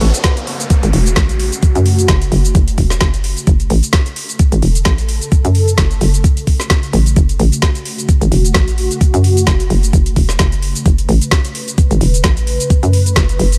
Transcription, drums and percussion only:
0.01 open hi-hat
0.14 closed hi-hat, shaker
0.24 kick, snare, closed hi-hat, shaker
0.37 closed hi-hat, shaker
0.47 open hi-hat
0.60 closed hi-hat, shaker
0.70 kick, closed hi-hat, shaker
0.83 closed hi-hat, shaker
0.93 open hi-hat
1.06 closed hi-hat, shaker
1.16 kick, snare, closed hi-hat, shaker
1.29 closed hi-hat, shaker
1.39 open hi-hat
1.52 closed hi-hat, shaker
1.63 kick, closed hi-hat, shaker
1.75 closed hi-hat, shaker
1.86 open hi-hat
1.99 closed hi-hat, shaker
2.08 kick, snare, closed hi-hat, shaker
2.22 closed hi-hat, shaker
2.32 open hi-hat
2.45 closed hi-hat, shaker
2.55 kick, closed hi-hat, shaker
2.68 closed hi-hat, shaker
2.78 kick, open hi-hat
2.90 snare, closed hi-hat, shaker
3.01 kick, snare, closed hi-hat, shaker
3.14 closed hi-hat, shaker
3.24 open hi-hat
3.37 closed hi-hat, shaker
3.47 kick, closed hi-hat, shaker
3.60 closed hi-hat, shaker
3.70 open hi-hat
3.83 closed hi-hat, shaker
3.93 kick, snare, closed hi-hat, shaker
4.06 closed hi-hat, shaker
4.16 open hi-hat
4.29 closed hi-hat, shaker
4.39 kick, closed hi-hat, shaker
4.52 closed hi-hat, shaker
4.62 open hi-hat
4.75 closed hi-hat, shaker
4.85 kick, snare, closed hi-hat, shaker
4.98 closed hi-hat, shaker
5.09 open hi-hat
5.21 closed hi-hat, shaker
5.32 kick, closed hi-hat, shaker
5.45 closed hi-hat, shaker
5.55 open hi-hat
5.68 closed hi-hat, shaker
5.78 kick, snare, closed hi-hat, shaker
5.91 closed hi-hat, shaker
6.01 open hi-hat
6.14 closed hi-hat, shaker
6.24 kick, closed hi-hat, shaker
6.37 closed hi-hat, shaker
6.47 kick, open hi-hat
6.60 snare, closed hi-hat, shaker
6.70 kick, snare, closed hi-hat, shaker
6.83 closed hi-hat, shaker
6.93 open hi-hat
7.06 closed hi-hat, shaker
7.16 kick, closed hi-hat, shaker
7.29 closed hi-hat, shaker
7.39 open hi-hat
7.52 closed hi-hat, shaker
7.62 kick, snare, closed hi-hat, shaker
7.75 closed hi-hat, shaker
7.85 open hi-hat
7.98 closed hi-hat, shaker
8.09 kick, closed hi-hat, shaker
8.21 closed hi-hat, shaker
8.32 open hi-hat
8.45 closed hi-hat, shaker
8.54 kick, snare, closed hi-hat, shaker
8.68 closed hi-hat, shaker
8.78 open hi-hat
8.91 closed hi-hat, shaker
9.01 kick, closed hi-hat, shaker
9.14 closed hi-hat, shaker
9.24 open hi-hat
9.37 closed hi-hat, shaker
9.47 kick, snare, closed hi-hat, shaker
9.60 closed hi-hat, shaker
9.70 open hi-hat
9.83 closed hi-hat, shaker
9.93 kick, closed hi-hat, shaker
10.06 closed hi-hat, shaker
10.16 kick, open hi-hat
10.29 snare, closed hi-hat, shaker
10.39 kick, snare, closed hi-hat, shaker
10.52 closed hi-hat, shaker
10.62 open hi-hat
10.75 closed hi-hat, shaker
10.86 kick, closed hi-hat, shaker
10.98 closed hi-hat, shaker
11.09 open hi-hat
11.21 closed hi-hat, shaker
11.31 kick, snare, closed hi-hat, shaker
11.45 closed hi-hat, shaker
11.55 open hi-hat
11.68 closed hi-hat, shaker
11.78 kick, closed hi-hat, shaker
11.91 closed hi-hat, shaker
12.01 open hi-hat
12.14 closed hi-hat, shaker
12.24 kick, snare, closed hi-hat, shaker
12.37 closed hi-hat, shaker
12.47 open hi-hat
12.60 closed hi-hat, shaker
12.70 kick, closed hi-hat, shaker
12.83 closed hi-hat, shaker
12.93 open hi-hat
13.06 closed hi-hat, shaker
13.16 kick, snare, closed hi-hat, shaker
13.29 closed hi-hat, shaker
13.39 open hi-hat
13.52 closed hi-hat, shaker

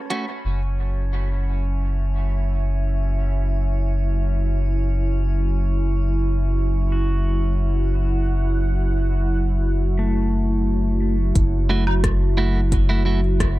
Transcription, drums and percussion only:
0.10 closed hi-hat
11.35 kick, closed hi-hat
11.87 low woodblock
12.04 kick, cross-stick, closed hi-hat
12.72 kick, closed hi-hat
13.40 kick, cross-stick, closed hi-hat

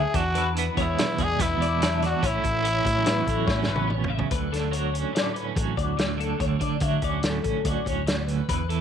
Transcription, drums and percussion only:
0.14 kick, closed hi-hat
0.35 closed hi-hat
0.56 closed hi-hat
0.77 kick, closed hi-hat
0.98 snare, closed hi-hat
1.18 kick, closed hi-hat
1.40 kick, snare, closed hi-hat
1.62 closed hi-hat
1.82 snare, closed hi-hat
2.02 snare, closed hi-hat
2.23 kick, closed hi-hat
2.44 kick, closed hi-hat
2.65 closed hi-hat
2.85 kick, closed hi-hat
3.06 snare, closed hi-hat
3.27 kick, closed hi-hat
3.48 kick, snare
3.63 snare
3.76 high tom
3.90 mid tom
4.04 mid tom
4.19 floor tom
4.31 kick, closed hi-hat
4.53 snare, closed hi-hat
4.73 closed hi-hat
4.95 closed hi-hat
5.16 snare, closed hi-hat
5.36 closed hi-hat
5.57 kick, closed hi-hat
5.77 kick, closed hi-hat
5.98 snare, closed hi-hat
6.20 closed hi-hat
6.40 kick, closed hi-hat
6.61 kick, closed hi-hat
6.80 kick, closed hi-hat
7.02 kick, closed hi-hat
7.23 snare, closed hi-hat
7.44 kick, closed hi-hat
7.65 kick, closed hi-hat
7.86 kick, closed hi-hat
8.07 snare, closed hi-hat
8.28 closed hi-hat
8.49 kick, closed hi-hat
8.70 closed hi-hat

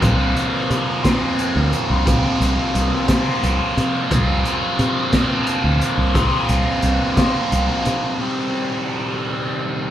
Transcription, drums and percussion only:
0.02 kick, closed hi-hat
0.36 closed hi-hat
0.71 closed hi-hat
1.05 kick, snare, closed hi-hat
1.39 closed hi-hat
1.73 closed hi-hat
2.07 kick, closed hi-hat
2.42 closed hi-hat
2.75 closed hi-hat
3.08 kick, snare, closed hi-hat
3.44 closed hi-hat
3.78 closed hi-hat
4.11 kick, closed hi-hat
4.45 closed hi-hat
4.79 closed hi-hat
5.13 kick, snare, closed hi-hat
5.47 closed hi-hat
5.82 closed hi-hat
6.15 kick, closed hi-hat
6.49 closed hi-hat
6.82 closed hi-hat
7.17 kick, snare, closed hi-hat
7.52 closed hi-hat
7.85 closed hi-hat

